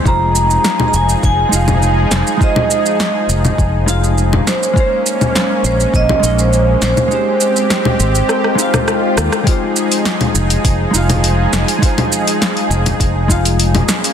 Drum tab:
HH |----------------|----------------|----------------|----------------|
SH |x-xxx-xxx-xxx-xx|x-xxx-xxx-xxx-xx|x-xxx-xxx-xxx-xx|x-xxx-xxx-xxx-xx|
SD |----o---------o-|----o---------o-|----o---------o-|----o---rr-rr-rr|
CG |-----O-----O----|-O-----O-----O--|---O-----O-----O|-----O-----O----|
BD |o-------o-------|o-------o-------|o-------o-------|----------------|

HH |o--ooo-oo--oo--o|oo-ooo-oo--ooo-o|
SH |x-xxx-xxx-xxx-xx|x-xxx-xxx-xxx-xx|
SD |----o---------o-|----o---------o-|
CG |-----O-----O----|-O-----O-----O--|
BD |o-------o-------|o-------o-o-----|